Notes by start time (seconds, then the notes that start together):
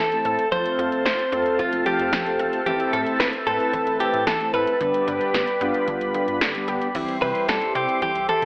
Already playing: C4 A4 E5 A5
0.00 A1 E3 A4
0.12 A3 C4 E4 A4, closed hi-hat
0.25 A2 A4, closed hi-hat
0.39 closed hi-hat
0.52 F1 F3 A3 C4 F4 A4 C5 F5, kick, closed hi-hat
0.66 closed hi-hat
0.79 F2 F3, closed hi-hat
0.92 closed hi-hat
1.05 F1 A3 C5, kick, snare, closed hi-hat
1.19 closed hi-hat
1.32 F2 A3 C4 F4 A4, closed hi-hat
1.46 closed hi-hat
1.59 F3 F4, kick, closed hi-hat
1.73 F1, closed hi-hat
1.86 F3 G4, closed hi-hat
1.99 F2, closed hi-hat
2.13 F1 F3, kick, snare, closed hi-hat
2.26 A3 C4 F4 A4, closed hi-hat
2.39 F1 A4, closed hi-hat
2.53 closed hi-hat
2.66 A1 E3 A3 C4 E4 G4 A4 E5, kick, closed hi-hat
2.80 closed hi-hat
2.93 A2 E3 A4, closed hi-hat
3.07 closed hi-hat
3.20 A1 A3 B4, kick, snare, closed hi-hat
3.33 closed hi-hat
3.47 A2 A3 C4 E4 A4 B4, closed hi-hat
3.60 closed hi-hat
3.73 E3, kick, closed hi-hat
3.87 A1, closed hi-hat
4.00 E3 G4, closed hi-hat
4.14 A2, closed hi-hat
4.27 A1 E3 A4, kick, snare, closed hi-hat
4.40 A3 C4 E4 A4, closed hi-hat
4.54 A2 A4 B4, closed hi-hat
4.67 closed hi-hat
4.81 G1 D3 G3 B3 D4 G4 B4 D5 B5, kick, closed hi-hat
4.94 closed hi-hat
5.07 G2 D3, closed hi-hat
5.21 closed hi-hat
5.34 G1 G3, kick, snare, closed hi-hat
5.47 closed hi-hat
5.61 G2 G3 B3 D4 F4, closed hi-hat
5.74 closed hi-hat
5.88 D3, kick, closed hi-hat
6.01 G1, closed hi-hat
6.14 D3, closed hi-hat
6.28 G2, closed hi-hat
6.41 G1 D3, kick, snare, closed hi-hat
6.55 G3 B3 D4 G4, closed hi-hat
6.68 G1 G4, closed hi-hat
6.82 closed hi-hat
6.95 C2 E3 G3 C4 E4 G4 C5 E5 C6, kick, closed hi-hat, crash
7.08 closed hi-hat
7.22 C3 E3 G3 C4 E4 G4 B4, closed hi-hat
7.35 closed hi-hat
7.48 C2 G3 A4, kick, snare, closed hi-hat
7.62 closed hi-hat
7.75 C3 C4 G4, closed hi-hat
7.89 closed hi-hat
8.02 E3 G4, kick, closed hi-hat
8.15 C2, closed hi-hat
8.29 E3 A4, closed hi-hat